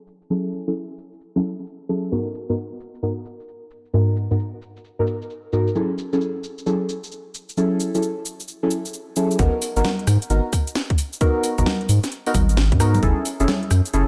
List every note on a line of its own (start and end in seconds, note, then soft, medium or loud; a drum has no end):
0.07 shaker medium
0.22 shaker soft
0.30 0.64 F#3 medium
0.30 0.64 C#4 medium
0.30 0.64 E4 medium
0.30 0.64 G#4 medium
0.30 0.64 A4 loud
0.30 shaker soft
0.53 shaker medium
0.67 0.73 F#3 medium
0.67 0.73 C#4 medium
0.67 0.73 E4 medium
0.67 0.73 G#4 medium
0.67 0.73 A4 medium
0.67 shaker soft
0.75 shaker soft
0.98 shaker medium
1.13 shaker soft
1.21 shaker soft
1.36 1.41 F#3 medium
1.36 1.41 C#4 medium
1.36 1.41 E4 medium
1.36 1.41 G#4 medium
1.36 1.41 A4 loud
1.44 shaker medium
1.58 shaker soft
1.66 shaker soft
1.89 2.10 F#3 medium
1.89 2.10 C#4 medium
1.89 2.10 E4 medium
1.89 2.10 G#4 medium
1.89 2.10 A4 medium
1.89 shaker medium
2.04 shaker soft
2.12 2.27 G#2 medium
2.12 2.27 B3 medium
2.12 2.27 D#4 medium
2.12 2.27 F#4 medium
2.12 2.27 A#4 medium
2.12 shaker soft
2.35 shaker medium
2.49 2.54 G#2 medium
2.49 2.54 B3 medium
2.49 2.54 D#4 medium
2.49 2.54 F#4 medium
2.49 2.54 A#4 loud
2.49 shaker soft
2.57 shaker soft
2.80 shaker medium
2.95 shaker soft
3.03 3.12 G#2 medium
3.03 3.12 B3 medium
3.03 3.12 D#4 medium
3.03 3.12 F#4 medium
3.03 3.12 A#4 loud
3.03 shaker soft
3.25 shaker medium
3.40 shaker soft
3.48 shaker soft
3.71 shaker medium
3.85 shaker soft
3.94 4.28 G#2 medium
3.94 4.28 B3 medium
3.94 4.28 D#4 medium
3.94 4.28 F#4 medium
3.94 4.28 A#4 loud
3.94 shaker soft
4.16 shaker medium
4.31 4.36 G#2 medium
4.31 4.36 B3 medium
4.31 4.36 D#4 medium
4.31 4.36 F#4 medium
4.31 4.36 A#4 medium
4.31 shaker soft
4.39 shaker soft
4.62 shaker medium
4.77 shaker soft
4.85 shaker soft
4.99 5.04 G#2 medium
4.99 5.04 B3 medium
4.99 5.04 D#4 medium
4.99 5.04 F#4 medium
4.99 5.04 A#4 loud
5.07 shaker medium
5.22 shaker soft
5.30 shaker soft
5.53 5.68 G#2 medium
5.53 5.68 B3 medium
5.53 5.68 D#4 medium
5.53 5.68 F#4 medium
5.53 5.68 A#4 medium
5.53 shaker medium
5.67 shaker soft
5.75 5.90 F#3 medium
5.75 5.90 C#4 medium
5.75 5.90 E4 medium
5.75 5.90 G#4 medium
5.75 5.90 A4 medium
5.75 shaker soft
5.98 shaker medium
6.13 6.18 F#3 medium
6.13 6.18 C#4 medium
6.13 6.18 E4 medium
6.13 6.18 G#4 medium
6.13 6.18 A4 loud
6.13 shaker soft
6.21 shaker soft
6.44 shaker medium
6.58 shaker soft
6.66 6.76 F#3 medium
6.66 6.76 C#4 medium
6.66 6.76 E4 medium
6.66 6.76 G#4 medium
6.66 6.76 A4 loud
6.66 shaker soft
6.89 shaker medium
7.04 shaker soft
7.12 shaker soft
7.35 shaker medium
7.49 shaker soft
7.57 7.91 F#3 medium
7.57 7.91 C#4 medium
7.57 7.91 E4 medium
7.57 7.91 G#4 medium
7.57 7.91 A4 loud
7.57 shaker soft
7.80 shaker medium
7.95 8.00 F#3 medium
7.95 8.00 C#4 medium
7.95 8.00 E4 medium
7.95 8.00 G#4 medium
7.95 8.00 A4 medium
7.95 shaker soft
8.03 shaker soft
8.25 shaker medium
8.40 shaker soft
8.48 shaker soft
8.63 8.68 F#3 medium
8.63 8.68 C#4 medium
8.63 8.68 E4 medium
8.63 8.68 G#4 medium
8.63 8.68 A4 loud
8.71 shaker medium
8.86 shaker soft
8.94 shaker soft
9.16 9.37 F#3 medium
9.16 9.37 C#4 medium
9.16 9.37 E4 medium
9.16 9.37 G#4 medium
9.16 9.37 A4 medium
9.16 shaker medium
9.31 shaker soft
9.39 9.50 G#1 loud
9.39 9.54 B3 medium
9.39 9.54 D#4 medium
9.39 9.54 F#4 medium
9.39 9.54 A#4 loud
9.39 kick loud
9.39 closed hi-hat medium
9.39 shaker soft
9.62 open hi-hat loud
9.62 shaker medium
9.77 9.82 G#1 loud
9.77 9.82 B3 loud
9.77 9.82 D#4 medium
9.77 9.82 F#4 medium
9.77 9.82 A#4 loud
9.77 shaker soft
9.85 snare loud
9.85 high conga medium
9.85 shaker soft
9.99 closed hi-hat soft
10.07 10.18 G#2 medium
10.07 cross-stick medium
10.07 open hi-hat loud
10.07 shaker medium
10.22 closed hi-hat medium
10.22 shaker soft
10.30 10.41 G#1 medium
10.30 10.39 B3 medium
10.30 10.39 D#4 medium
10.30 10.39 F#4 medium
10.30 10.39 A#4 loud
10.30 closed hi-hat medium
10.30 shaker soft
10.53 kick loud
10.53 cross-stick medium
10.53 open hi-hat loud
10.53 shaker medium
10.67 closed hi-hat medium
10.67 shaker soft
10.75 snare loud
10.75 shaker soft
10.90 kick loud
10.90 closed hi-hat medium
10.98 open hi-hat loud
10.98 shaker medium
11.13 shaker soft
11.21 11.55 B3 medium
11.21 11.55 D#4 medium
11.21 11.55 F#4 medium
11.21 11.55 A#4 loud
11.21 kick loud
11.21 closed hi-hat medium
11.21 shaker soft
11.44 open hi-hat loud
11.44 shaker medium
11.58 11.64 G#1 loud
11.58 11.63 B3 medium
11.58 11.63 D#4 medium
11.58 11.63 F#4 medium
11.58 11.63 A#4 loud
11.58 kick medium
11.58 shaker soft
11.66 snare loud
11.66 high conga medium
11.66 shaker soft
11.81 closed hi-hat soft
11.89 12.00 G#2 medium
11.89 open hi-hat loud
11.89 shaker medium
12.04 snare medium
12.04 closed hi-hat medium
12.04 shaker soft
12.12 closed hi-hat medium
12.12 shaker soft
12.26 12.32 B3 loud
12.26 12.32 D#4 medium
12.26 12.32 F#4 medium
12.26 12.32 A#4 loud
12.26 open hi-hat medium
12.35 12.73 G#1 loud
12.35 kick loud
12.35 open hi-hat loud
12.35 high conga medium
12.35 shaker medium
12.49 closed hi-hat medium
12.49 shaker soft
12.57 snare loud
12.57 shaker soft
12.72 12.99 G#2 loud
12.72 kick loud
12.72 closed hi-hat medium
12.80 13.01 B3 medium
12.80 13.01 D#4 medium
12.80 13.01 F#4 medium
12.80 13.01 A#4 medium
12.80 cross-stick medium
12.80 open hi-hat loud
12.80 shaker medium
12.95 high conga medium
12.95 shaker soft
13.03 13.13 F#1 loud
13.03 13.18 C#4 medium
13.03 13.18 E4 medium
13.03 13.18 G#4 medium
13.03 13.18 A4 loud
13.03 kick loud
13.03 closed hi-hat medium
13.03 shaker soft
13.25 open hi-hat loud
13.25 shaker medium
13.40 13.46 F#1 loud
13.40 13.45 C#4 medium
13.40 13.45 E4 medium
13.40 13.45 G#4 medium
13.40 13.45 A4 loud
13.40 shaker soft
13.48 snare loud
13.48 high conga medium
13.48 shaker soft
13.63 closed hi-hat soft
13.71 13.81 F#2 medium
13.71 cross-stick medium
13.71 open hi-hat loud
13.71 shaker medium
13.86 closed hi-hat medium
13.86 shaker soft
13.94 14.04 F#1 medium
13.94 14.03 C#4 loud
13.94 14.03 E4 medium
13.94 14.03 G#4 medium
13.94 14.03 A4 loud
13.94 closed hi-hat medium
13.94 shaker soft